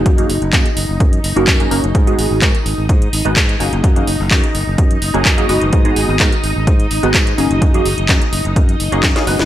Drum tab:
HH |xxoxxxo-xxoxxxox|xxo-xxo-xxoxxxox|xxo-xxo-xxoxxxox|xxo-xxo-xxoxxxox|
CP |----x-------x---|----x-------x---|----x-------x---|----x-------x---|
SD |----------------|----------------|----------------|----------------|
BD |o---o---o---o---|o---o---o---o---|o---o---o---o---|o---o---o---o---|

HH |xxoxxxoxxxoxxxox|
CP |----x-------x---|
SD |------------oo-o|
BD |o---o---o---o---|